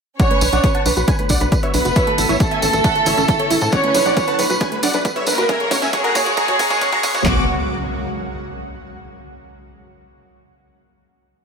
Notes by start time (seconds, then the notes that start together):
0.19 D3 F#3 A3 B3 C#4 F#4 C#5 D5 F#5, kick, closed hi-hat, tambourine, riser
0.31 A3 B4, closed hi-hat
0.41 B1 D4 B4, open hi-hat, tambourine
0.53 B1 D4 D5 F#5, closed hi-hat, tambourine
0.63 B4 D5, kick, closed hi-hat, tambourine
0.75 B4 F#5 A5, closed hi-hat
0.85 B1 D4 B4, open hi-hat, tambourine
0.97 B1 F#4 B4, closed hi-hat, tambourine
1.08 D4 B4 G#5, kick, closed hi-hat, tambourine
1.19 A3 B4, closed hi-hat
1.29 B1 D4 D5 F#5, kick, open hi-hat, tambourine
1.40 B1 D4 B4, closed hi-hat, tambourine
1.52 B4 D5, kick, closed hi-hat, tambourine
1.63 B4 C#5 E5, closed hi-hat
1.74 B1 B3 D4 B4, open hi-hat, tambourine
1.85 F#1 F#4 B4, closed hi-hat, tambourine
1.95 C#3 E3 E4 A4 C#5 E5, kick, closed hi-hat, tambourine
2.07 A3 A4, closed hi-hat
2.18 A1 E4 A4, open hi-hat, tambourine
2.29 A1 E4 C#5 E5, closed hi-hat, tambourine
2.40 A3 A4 A5, kick, closed hi-hat, tambourine
2.51 E5 G#5, closed hi-hat
2.62 A1 C#4 A4, open hi-hat, tambourine
2.73 A1 A4, closed hi-hat, tambourine
2.84 A4 C#5 F#5, kick, closed hi-hat, tambourine
2.95 A4, closed hi-hat
3.06 A1 E4 C#5 E5, open hi-hat, tambourine
3.17 A1 C#4 A4, closed hi-hat, tambourine
3.28 E4 A4, kick, closed hi-hat, tambourine
3.39 A4 C#5, closed hi-hat
3.50 A1 E4 A4, open hi-hat, tambourine
3.61 A2 A4, closed hi-hat, tambourine
3.72 D3 F#3 A3 B3 C#4 F#4 C#5 D5 F#5, kick, closed hi-hat, tambourine
3.84 A3 B4, closed hi-hat
3.94 B1 D4 B4, open hi-hat, tambourine
4.06 B1 D4 D5 F#5, closed hi-hat, tambourine
4.17 B4 D5, kick, closed hi-hat, tambourine
4.28 B4 F#5 A5, closed hi-hat
4.39 B1 D4 B4, open hi-hat, tambourine
4.50 B1 F#4 B4, closed hi-hat, tambourine
4.60 D4 B4 G#5, kick, closed hi-hat, tambourine
4.72 A3 B4, closed hi-hat
4.83 B1 D4 D5 F#5, open hi-hat, tambourine
4.93 B1 D4 B4, closed hi-hat, tambourine
5.05 B4 D5, kick, closed hi-hat, tambourine
5.16 B4 C#5 E5, closed hi-hat
5.26 B1 A#3 D4 A#4 B4, open hi-hat, tambourine
5.38 F#1 F#4 B4, closed hi-hat, tambourine
5.49 C#3 G#3 A#3 C#4 E5 G#5, kick, closed hi-hat, tambourine
5.60 G#3 C#5, closed hi-hat
5.71 F#1 C#4 C#5, kick, open hi-hat, tambourine
5.82 F#1 C#4 E5 G#5, closed hi-hat, tambourine
5.93 G#3 G#4 C#5, kick, closed hi-hat, tambourine
6.04 A#4 F#5 A#5, closed hi-hat
6.15 F#1 A#3 C#5, kick, open hi-hat, tambourine
6.26 F#1 F#4 C#5, closed hi-hat, tambourine
6.37 G#4 A#5 C#6, kick, closed hi-hat, tambourine
6.48 F#4 C#5, kick, closed hi-hat
6.59 F#1 C#4 A#5 C#6, kick, open hi-hat, tambourine
6.70 F#1 A#3 C#5, kick, closed hi-hat, tambourine
6.81 C#4 C#5, kick, closed hi-hat, tambourine
6.92 F#4 A#5 C#6, kick, closed hi-hat
7.03 F#1 C#4 C#5, kick, open hi-hat, tambourine
7.14 F#2 F#4 C#5, kick, closed hi-hat, tambourine
7.25 B1 A3 F#4 D6, kick, clap, impact